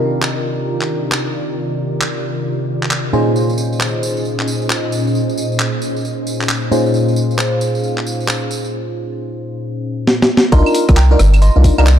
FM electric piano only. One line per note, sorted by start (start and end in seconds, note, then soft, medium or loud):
0.00 3.11 C3 medium
0.00 3.11 D4 medium
0.00 3.11 D#4 medium
0.00 3.11 F4 medium
0.00 3.11 G4 medium
0.00 3.11 A#4 medium
3.13 6.70 A#2 medium
3.13 6.70 C#4 medium
3.13 6.70 D#4 medium
3.13 6.70 F4 medium
3.13 6.70 G#4 medium
3.13 6.70 C5 medium
6.72 10.28 A#2 medium
6.72 10.28 C#4 medium
6.72 10.28 D#4 medium
6.72 10.28 F4 medium
6.72 10.28 G#4 medium
6.72 10.28 C5 medium
10.52 10.85 D4 loud
10.52 10.85 D#4 medium
10.52 10.85 F4 medium
10.52 10.85 A#4 loud
10.89 10.96 D4 medium
10.89 10.96 D#4 medium
10.89 10.96 F4 medium
10.89 10.97 A#4 medium
11.11 11.19 D4 loud
11.11 11.19 D#4 medium
11.11 11.19 F4 medium
11.11 11.19 A#4 loud
11.56 11.75 D4 medium
11.56 11.75 D#4 medium
11.56 11.75 F4 medium
11.56 11.75 A#4 medium
11.78 11.86 D4 loud
11.78 11.86 D#4 loud
11.78 11.86 F4 loud
11.78 11.86 A#4 loud